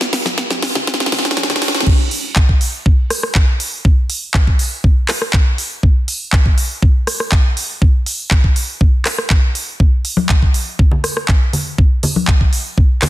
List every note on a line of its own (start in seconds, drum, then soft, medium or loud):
0.01 snare medium
0.13 snare loud
0.13 open hi-hat loud
0.25 snare medium
0.25 high conga medium
0.38 kick loud
0.38 snare medium
0.50 kick medium
0.50 snare medium
0.50 high conga medium
0.62 snare loud
0.62 open hi-hat loud
0.75 snare medium
0.75 low conga medium
0.87 kick loud
0.87 snare loud
0.94 snare medium
1.00 snare medium
1.06 snare loud
1.12 snare loud
1.12 open hi-hat loud
1.12 low conga medium
1.19 snare medium
1.25 kick medium
1.25 snare medium
1.31 snare medium
1.37 kick loud
1.37 snare loud
1.37 high conga medium
1.43 snare medium
1.50 snare medium
1.50 low conga medium
1.56 snare medium
1.62 snare loud
1.62 open hi-hat loud
1.68 snare loud
1.75 snare loud
1.80 snare loud
1.87 kick loud
1.87 crash loud
2.11 open hi-hat loud
2.36 kick loud
2.36 clap loud
2.49 kick medium
2.61 open hi-hat loud
2.86 kick loud
3.10 cross-stick medium
3.10 open hi-hat loud
3.23 cross-stick medium
3.35 kick loud
3.35 clap loud
3.60 open hi-hat loud
3.85 kick loud
4.10 open hi-hat loud
4.34 kick loud
4.34 clap loud
4.47 kick medium
4.59 open hi-hat loud
4.84 kick loud
5.08 cross-stick medium
5.08 clap medium
5.08 open hi-hat loud
5.22 cross-stick medium
5.33 kick loud
5.33 clap loud
5.58 open hi-hat loud
5.83 kick loud
6.08 open hi-hat loud
6.33 kick loud
6.33 clap loud
6.46 kick medium
6.58 open hi-hat loud
6.82 kick loud
7.07 cross-stick medium
7.07 open hi-hat loud
7.20 cross-stick medium
7.32 kick loud
7.32 clap loud
7.57 open hi-hat loud
7.82 kick loud
8.06 open hi-hat loud
8.31 kick loud
8.31 clap loud
8.44 kick medium
8.56 open hi-hat loud
8.81 kick loud
9.05 cross-stick medium
9.05 clap medium
9.05 open hi-hat loud
9.18 cross-stick medium
9.30 kick loud
9.30 clap loud
9.55 open hi-hat loud
9.80 kick loud
10.05 open hi-hat loud
10.17 high conga loud
10.29 kick loud
10.29 clap loud
10.42 kick medium
10.54 open hi-hat loud
10.79 kick loud
10.91 low conga medium
11.04 cross-stick medium
11.04 open hi-hat loud
11.17 cross-stick medium
11.28 kick loud
11.28 clap loud
11.53 open hi-hat loud
11.53 low conga medium
11.78 kick loud
12.03 open hi-hat loud
12.03 low conga medium
12.16 high conga medium
12.28 kick loud
12.28 clap loud
12.41 kick medium
12.53 open hi-hat loud
12.78 kick loud
13.02 cross-stick medium
13.02 clap medium
13.02 open hi-hat loud
13.02 low conga medium